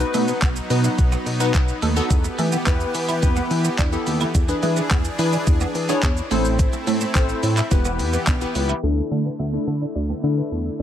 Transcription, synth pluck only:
0.00 0.37 B3 medium
0.00 0.38 D#4 medium
0.00 0.38 F#4 medium
0.00 0.38 B4 loud
0.70 1.08 B3 medium
0.70 1.08 D#4 medium
0.70 1.08 F#4 medium
0.70 1.08 B4 medium
1.40 1.70 B3 loud
1.40 1.70 D#4 medium
1.40 1.70 F#4 medium
1.40 1.70 B4 loud
1.96 2.10 B3 loud
1.96 2.10 D#4 medium
1.96 2.11 F#4 medium
1.96 2.11 A4 loud
2.66 2.96 B3 loud
2.66 2.96 E4 medium
2.66 2.96 G4 medium
2.66 2.97 B4 loud
3.22 3.60 B3 loud
3.22 3.60 E4 medium
3.22 3.60 G4 medium
3.22 3.60 B4 loud
3.92 4.22 B3 medium
3.92 4.22 E4 medium
3.92 4.23 G4 medium
3.92 4.23 A4 loud
4.48 4.86 D4 medium
4.48 4.86 E4 medium
4.48 4.86 G#4 medium
4.48 4.86 B4 loud
5.18 5.56 D4 medium
5.18 5.56 E4 medium
5.18 5.56 G#4 medium
5.18 5.56 B4 loud
5.89 6.19 D4 medium
5.89 6.19 E4 medium
5.89 6.19 G#4 medium
5.89 6.19 C#5 loud
6.31 6.98 C4 medium
6.31 6.98 E4 medium
6.31 6.98 A4 medium
6.31 6.98 C5 medium
7.15 7.45 C4 loud
7.15 7.45 E4 medium
7.15 7.45 A4 medium
7.15 7.45 C5 loud
7.71 8.09 B3 medium
7.71 8.09 E4 medium
7.71 8.09 G4 medium
7.71 8.09 B4 loud
8.41 8.71 B3 medium
8.41 8.71 E4 medium
8.41 8.71 G4 medium
8.41 8.71 B4 loud
8.83 9.21 A3 medium
8.83 9.21 D4 medium
8.83 9.21 E4 medium
8.83 9.21 A4 loud
9.53 9.91 A3 medium
9.53 9.91 D4 medium
9.53 9.91 E4 medium
9.53 9.91 A4 loud
10.23 10.53 A3 medium
10.23 10.53 D4 medium
10.23 10.54 E4 medium
10.23 10.54 A4 loud

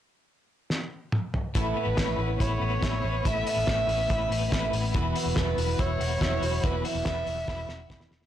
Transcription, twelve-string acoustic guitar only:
1.54 1.96 A2 medium
1.54 1.96 A3 medium
1.54 1.99 B3 medium
1.54 1.97 C#4 medium
1.54 1.99 E4 medium
1.97 2.19 A2 medium
1.97 2.19 A3 medium
1.97 2.20 B3 medium
1.97 2.19 C#4 medium
1.97 2.17 E4 medium
2.18 2.41 B3 soft
2.18 2.40 C#4 soft
2.18 2.40 E4 soft
2.40 2.82 A3 medium
2.40 2.84 B3 soft
2.40 2.83 C#4 soft
2.40 2.84 E4 medium
2.82 3.04 A2 medium
2.82 3.04 A3 medium
2.82 3.04 B3 medium
2.82 3.04 C#4 medium
2.82 3.02 E4 medium
3.03 3.25 B3 medium
3.03 3.25 C#4 soft
3.03 3.25 E4 medium
3.25 3.66 A2 medium
3.25 3.67 A3 medium
3.25 3.68 B3 medium
3.25 3.67 C#4 medium
3.25 3.69 E4 medium
3.67 3.88 A2 medium
3.67 3.89 A3 medium
3.67 3.89 B3 medium
3.67 3.89 C#4 medium
3.67 3.87 E4 medium
3.88 4.11 B3 soft
3.88 4.10 C#4 soft
3.88 4.10 E4 soft
4.09 4.51 A3 medium
4.09 4.53 B3 medium
4.09 4.52 C#4 medium
4.09 4.54 E4 medium
4.52 4.73 A2 medium
4.52 4.73 A3 medium
4.52 4.74 B3 medium
4.52 4.74 C#4 medium
4.52 4.72 E4 medium
4.73 4.95 B3 soft
4.73 4.95 C#4 soft
4.73 4.94 E4 medium
4.94 5.36 E2 medium
4.94 5.37 E3 medium
4.94 5.38 F#3 medium
4.94 5.38 B3 medium
4.94 5.39 E4 medium
4.94 5.38 F#4 medium
5.37 5.58 E2 medium
5.37 5.58 E3 medium
5.37 5.59 F#3 medium
5.37 5.59 B3 medium
5.37 5.56 E4 medium
5.37 5.57 F#4 medium
5.57 5.77 F#3 soft
5.57 5.79 B3 soft
5.57 5.79 E4 medium
5.57 5.79 F#4 soft
5.79 6.22 F#3 medium
5.79 6.22 B3 medium
5.79 6.23 E4 medium
5.79 6.23 F#4 medium
6.21 6.42 E2 medium
6.21 6.43 E3 medium
6.21 6.43 F#3 medium
6.21 6.43 B3 medium
6.21 6.41 E4 medium
6.21 6.42 F#4 medium
6.42 6.63 F#3 soft
6.42 6.63 B3 soft
6.42 6.63 E4 medium
6.42 6.64 F#4 medium
6.63 7.05 E2 medium
6.63 7.05 E3 medium
6.63 7.06 F#3 medium
6.63 7.06 B3 medium
6.63 7.07 E4 medium
6.63 7.07 F#4 medium
7.05 7.27 E2 medium
7.05 7.27 E3 medium
7.05 7.27 F#3 medium
7.05 7.27 B3 medium
7.05 7.25 E4 medium
7.05 7.26 F#4 medium
7.26 7.46 F#3 soft
7.26 7.47 B3 soft
7.26 7.48 E4 medium
7.26 7.48 F#4 medium
7.47 7.90 F#3 soft
7.47 7.91 B3 medium
7.47 7.91 E4 medium
7.47 7.91 F#4 medium
7.90 8.11 E2 medium
7.90 8.11 E3 medium
7.90 8.12 F#3 medium
7.90 8.12 B3 medium
7.90 8.09 E4 loud
7.90 8.11 F#4 medium
8.10 8.26 F#3 soft
8.10 8.26 B3 soft
8.10 8.26 E4 medium
8.10 8.26 F#4 soft

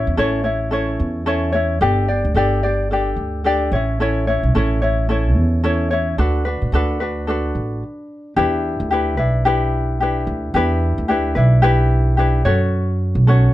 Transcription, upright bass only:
0.07 0.17 E2 medium
0.18 0.95 A1 medium
1.00 1.77 E2 medium
1.81 2.21 G1 medium
2.25 2.34 D2 medium
2.35 3.13 G1 medium
3.16 3.68 D2 medium
3.72 4.39 A1 medium
4.43 4.53 B1 medium
4.55 5.36 A1 medium
5.36 6.14 E2 medium
6.18 6.58 D2 medium
6.62 6.72 A2 medium
6.72 7.50 D2 medium
7.55 7.81 A1 medium
8.36 8.77 E2 medium
8.80 9.18 D2 medium
9.18 10.23 B1 medium
10.27 10.52 D2 medium
10.54 10.94 E2 medium
10.98 11.33 D2 medium
11.36 12.41 B1 medium
12.45 13.12 F#2 medium
13.15 13.51 B1 medium

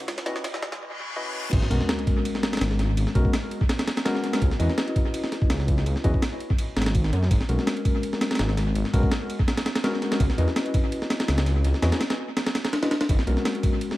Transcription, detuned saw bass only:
0.08 0.17 C#2 loud
0.26 0.35 E2 medium
1.53 1.61 G#1 loud
1.71 1.79 B1 medium
2.61 2.96 G#1 medium
2.97 3.06 G#1 loud
3.15 3.24 B1 medium
4.42 4.50 C#2 loud
4.60 4.68 E2 medium
5.50 5.85 C#2 medium
5.86 5.95 C#2 loud
6.04 6.13 E2 medium
6.76 7.11 G#1 medium
7.13 7.29 F#2 loud
7.31 7.40 G#1 loud
7.49 7.58 B1 medium
8.39 8.74 G#1 medium
8.75 8.84 G#1 loud
8.94 9.02 B1 medium
10.20 10.29 C#2 loud
10.38 10.47 E2 medium
11.28 11.63 C#2 medium
11.64 11.73 C#2 loud
11.82 11.91 E2 medium
13.09 13.18 G#1 loud
13.27 13.36 B1 medium

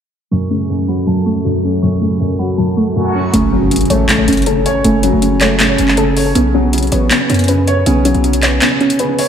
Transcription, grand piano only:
0.32 0.68 F#2 medium
0.50 1.45 C#3 medium
0.69 1.06 F#2 medium
0.88 1.83 F#3 medium
1.07 1.43 F#2 medium
1.26 2.20 A3 medium
1.45 1.81 F#2 medium
1.64 2.58 C#4 medium
1.83 2.19 F#2 medium
2.01 2.96 C#3 medium
2.20 2.57 F#2 medium
2.39 3.33 F#3 medium
2.58 2.94 F#2 medium
2.77 3.33 A3 medium
2.96 3.33 F#2 medium
3.15 3.34 C#4 medium
3.34 3.70 C#3 medium
3.52 4.47 F#3 medium
3.71 4.07 C#3 medium
3.90 4.85 A3 medium
4.09 4.45 C#3 medium
4.28 5.22 C#4 medium
4.47 4.83 C#3 medium
4.66 5.60 C#5 loud
4.84 5.21 C#3 medium
5.04 5.98 F#3 medium
5.22 5.58 C#3 medium
5.41 6.35 A3 medium
5.60 5.96 C#3 medium
5.79 6.35 C#4 medium
5.98 6.34 C#3 medium
6.17 6.35 C#5 medium
6.35 6.72 C#3 loud
6.55 7.49 F#3 medium
6.73 7.09 C#3 medium
6.92 7.86 B3 medium
7.11 7.47 C#3 medium
7.30 8.24 C#4 medium
7.49 7.85 C#3 medium
7.67 8.62 C#5 medium
7.86 8.23 C#3 loud
8.05 8.99 F#3 medium
8.24 8.60 C#3 medium
8.43 9.28 B3 medium
8.62 8.98 C#3 medium
8.81 9.28 C#4 medium
9.00 9.28 C#3 medium
9.19 9.28 C#5 medium

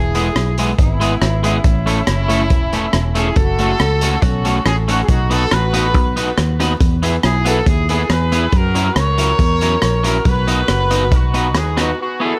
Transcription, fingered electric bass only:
0.00 0.29 E1 medium
0.35 0.72 B1 medium
0.78 1.15 G#1 medium
1.21 1.58 G#1 loud
1.64 2.01 A1 loud
2.07 2.50 F#1 medium
2.50 2.87 E1 medium
2.93 3.30 E1 medium
3.36 3.73 F#1 loud
3.80 4.16 C#2 medium
4.22 4.59 B1 medium
4.65 5.02 A1 medium
5.08 5.45 B1 loud
5.52 5.94 A1 medium
5.94 6.31 B1 medium
6.38 6.74 D#2 medium
6.81 7.17 E2 loud
7.24 7.60 B1 medium
7.66 8.03 D#2 loud
8.09 8.46 E2 medium
8.53 8.89 F#2 loud
8.96 9.32 C#2 medium
9.39 9.76 E2 medium
9.82 10.19 A#1 medium
10.25 10.62 B1 loud
10.68 11.11 F#1 medium
11.11 11.55 B1 loud
11.55 11.92 D#2 medium

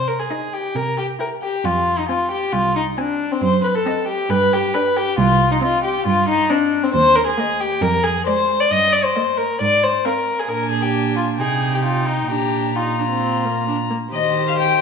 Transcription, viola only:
0.31 0.64 D#4 soft
1.19 1.53 E4 soft
2.09 2.42 C4 soft
2.98 3.31 C4 soft
3.86 4.19 C4 medium
4.75 5.07 D4 medium
5.62 5.94 C4 medium
6.50 6.83 C4 soft
7.38 7.71 A#3 medium
8.27 8.60 G#3 soft
9.17 9.50 A#3 medium
10.06 10.38 C4 soft
10.50 11.41 D4 soft
11.40 12.32 D#4 soft
12.31 12.76 D4 soft
12.77 13.01 D#4 soft
12.99 13.10 D4 soft
13.10 13.47 C4 soft
13.45 13.67 A#3 soft
13.68 13.76 D4 soft
13.90 13.98 A#3 soft
14.13 14.81 G4 soft

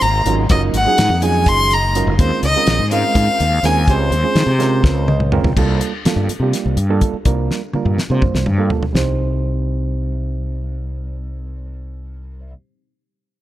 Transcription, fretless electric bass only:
0.02 0.25 G#1 medium
0.25 0.49 G#1 medium
0.50 0.73 F#1 loud
0.73 0.85 G#1 medium
0.98 1.09 G#2 medium
1.09 1.44 F2 medium
1.46 2.03 F#1 medium
2.07 2.18 F#1 medium
2.19 2.30 D#2 medium
2.43 2.54 C#2 medium
2.56 muted fretless electric bass stroke soft
2.67 2.79 A#1 medium
2.79 3.02 G#2 medium
3.16 3.27 G#2 loud
3.40 3.62 D#2 medium
3.63 3.86 D#2 medium
3.88 4.10 C#2 loud
4.11 4.23 D#2 medium
4.35 4.46 D#3 loud
4.47 4.81 C3 medium
4.84 5.40 C#2 medium
5.44 5.56 C#2 loud
5.57 5.79 C2 medium
6.05 muted fretless electric bass stroke soft
6.16 6.27 G2 medium
6.28 muted fretless electric bass stroke soft
6.40 6.52 C3 medium
6.66 6.76 C2 medium
6.77 7.00 G2 medium
7.13 muted fretless electric bass stroke soft
7.25 7.48 C2 medium
7.74 muted fretless electric bass stroke soft
7.85 7.97 G2 medium
7.98 muted fretless electric bass stroke soft
8.10 8.21 C3 medium
8.34 8.45 C2 medium
8.46 8.69 G2 medium
8.82 muted fretless electric bass stroke soft
8.95 12.53 C2 medium

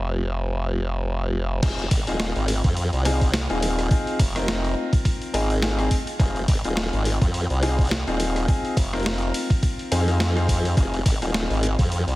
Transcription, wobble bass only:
0.00 1.60 F1 medium
1.63 1.89 F1 loud
1.91 2.05 G#1 loud
2.07 2.33 D#1 loud
2.36 2.62 G#1 medium
2.64 2.90 F2 loud
2.93 3.47 C2 loud
3.50 3.89 D#1 medium
4.19 4.75 F1 loud
5.34 5.89 G#1 medium
6.20 6.46 F1 loud
6.48 6.62 G#1 loud
6.64 6.90 D#1 loud
6.93 7.19 G#1 loud
7.21 7.47 F2 loud
7.50 8.05 C2 loud
8.07 8.46 D#1 medium
8.77 9.32 F1 loud
9.92 10.75 F2 medium
10.77 11.04 F1 loud
11.06 11.19 G#1 loud
11.21 11.47 D#1 loud
11.50 11.76 G#1 medium
11.79 12.05 F2 loud
12.07 12.15 C2 loud

